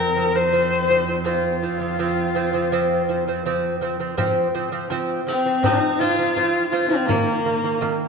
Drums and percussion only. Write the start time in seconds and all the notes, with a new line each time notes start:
4.18 frame drum
4.55 frame drum
4.90 frame drum
5.64 frame drum
6.37 frame drum
6.72 frame drum
7.09 frame drum
7.45 frame drum
7.82 frame drum